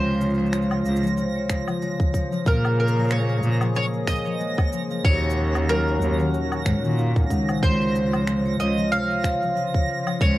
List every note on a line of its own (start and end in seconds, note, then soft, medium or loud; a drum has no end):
0.00 0.79 C#2 loud
0.00 0.26 C3 loud
0.00 0.52 G#3 medium
0.00 2.42 F4 loud
0.00 0.81 C5 medium
0.00 0.20 C#5 medium
0.00 10.38 A#6 medium
0.06 cabasa soft
0.10 cabasa soft
0.14 cabasa soft
0.17 1.23 C#3 medium
0.17 0.38 C#5 medium
0.17 cabasa soft
0.21 cabasa medium
0.25 cabasa soft
0.30 cabasa soft
0.34 cabasa soft
0.39 0.84 F3 medium
0.39 cabasa soft
0.46 cabasa soft
0.53 1.81 G#3 medium
0.53 0.63 C#5 medium
0.53 finger snap medium
0.53 cabasa soft
0.62 cabasa soft
0.71 cabasa soft
0.71 low woodblock medium
0.85 0.98 C#2 loud
0.85 1.02 F3 medium
0.85 cabasa medium
0.96 cabasa medium
1.03 1.23 F3 medium
1.03 1.17 C#5 medium
1.03 cabasa soft
1.06 cabasa medium
1.17 1.55 C3 medium
1.17 cabasa soft
1.36 1.44 C#5 medium
1.49 2.52 C#3 medium
1.49 finger snap medium
1.49 kick medium
1.49 cabasa medium
1.68 2.13 F3 medium
1.68 cabasa soft
1.68 low woodblock medium
1.82 2.52 G#3 medium
1.82 1.99 C#5 medium
1.82 cabasa soft
2.00 kick loud
2.00 cabasa soft
2.14 2.31 F3 medium
2.14 2.25 C#5 medium
2.14 kick medium
2.14 cabasa medium
2.32 2.52 F3 medium
2.32 cabasa soft
2.46 3.37 A#2 loud
2.46 2.84 A#2 loud
2.46 5.02 A#3 medium
2.46 5.02 G#4 loud
2.46 2.79 A#4 medium
2.46 kick loud
2.46 cabasa soft
2.64 2.78 C#5 medium
2.64 cabasa soft
2.64 low woodblock medium
2.79 3.81 C#3 medium
2.79 3.11 A#4 medium
2.88 cabasa medium
2.97 3.42 F3 medium
2.97 3.05 C#5 medium
2.97 cabasa soft
2.99 cabasa soft
3.04 cabasa soft
3.06 cabasa soft
3.08 finger snap medium
3.08 cabasa soft
3.11 4.39 G#3 medium
3.11 3.75 C#5 loud
3.11 cabasa soft
3.29 cabasa soft
3.43 3.56 A#2 loud
3.43 3.60 F3 medium
3.43 cabasa medium
3.61 4.13 F3 medium
3.61 cabasa soft
3.61 low woodblock medium
3.75 4.13 A#2 loud
3.75 3.86 C#5 medium
3.75 3.85 C#5 loud
3.75 cabasa soft
3.93 cabasa soft
4.07 5.10 C#3 medium
4.07 4.68 D#5 medium
4.07 finger snap medium
4.07 kick medium
4.07 cabasa medium
4.10 cabasa medium
4.18 cabasa soft
4.21 cabasa soft
4.23 4.39 C#5 medium
4.23 cabasa soft
4.26 4.71 F3 medium
4.26 cabasa soft
4.40 5.10 G#3 medium
4.40 cabasa soft
4.58 4.66 C#5 medium
4.58 kick loud
4.58 cabasa soft
4.58 low woodblock medium
4.73 4.89 F3 medium
4.73 cabasa medium
4.90 5.10 F3 medium
4.90 cabasa soft
5.05 5.95 D#2 loud
5.05 5.42 A#2 loud
5.05 7.60 D#3 medium
5.05 7.60 C#4 medium
5.05 7.60 F#4 loud
5.05 5.69 C#5 loud
5.05 5.22 C#5 medium
5.05 kick loud
5.05 cabasa soft
5.23 cabasa soft
5.30 cabasa medium
5.37 5.58 C#3 medium
5.37 5.47 C#5 medium
5.55 6.00 D#3 medium
5.55 cabasa soft
5.55 low woodblock medium
5.69 6.06 F#3 medium
5.69 6.62 A#4 loud
5.69 finger snap medium
5.69 cabasa soft
5.87 6.01 C#5 medium
5.87 cabasa soft
6.01 6.14 D#2 loud
6.01 6.19 D#3 medium
6.01 cabasa medium
6.20 6.39 D#3 medium
6.20 6.28 C#5 medium
6.20 cabasa soft
6.34 6.71 A#2 medium
6.34 cabasa soft
6.52 cabasa soft
6.52 low woodblock medium
6.66 6.79 G#2 medium
6.66 6.83 D#3 medium
6.66 6.83 C#5 medium
6.66 finger snap medium
6.66 kick medium
6.66 cabasa medium
6.84 7.24 A#2 medium
6.84 6.97 D#3 medium
6.84 cabasa soft
6.98 7.15 D#3 medium
6.98 7.15 F5 medium
6.98 cabasa soft
7.16 7.52 D#3 medium
7.16 kick loud
7.16 cabasa soft
7.30 7.43 C#2 medium
7.30 10.01 D#4 medium
7.30 7.41 F#5 medium
7.30 kick medium
7.30 cabasa medium
7.48 7.68 A#2 medium
7.48 7.62 C5 medium
7.48 cabasa soft
7.48 low woodblock medium
7.62 8.53 C#2 medium
7.62 8.00 C3 medium
7.62 10.38 F4 loud
7.62 8.55 C5 loud
7.62 7.73 C#5 medium
7.62 kick loud
7.62 cabasa soft
7.81 cabasa soft
7.95 8.97 C#3 medium
7.95 cabasa medium
8.13 8.59 F3 medium
8.13 8.27 C#5 medium
8.13 cabasa soft
8.13 low woodblock medium
8.27 9.55 G#3 medium
8.27 finger snap medium
8.27 cabasa soft
8.46 8.54 C#5 medium
8.46 cabasa soft
8.60 8.73 C#2 loud
8.60 8.77 F3 medium
8.60 8.90 D#5 medium
8.60 cabasa medium
8.78 8.97 F3 medium
8.78 cabasa soft
8.92 9.29 C3 loud
8.92 9.09 C#5 medium
8.92 10.25 F5 loud
8.92 cabasa soft
9.10 cabasa soft
9.24 10.26 C#3 medium
9.24 9.35 C#5 medium
9.24 finger snap medium
9.24 kick medium
9.24 cabasa medium
9.42 9.87 F3 medium
9.42 cabasa soft
9.56 10.38 G#3 medium
9.56 cabasa soft
9.74 9.88 C#5 medium
9.74 kick loud
9.74 cabasa soft
9.89 10.05 F3 medium
10.06 10.26 F3 medium
10.06 10.15 C#5 medium
10.06 cabasa soft
10.06 low woodblock medium
10.21 10.38 C#2 loud
10.21 10.38 C3 loud
10.21 10.38 C#5 loud
10.21 kick loud
10.21 cabasa soft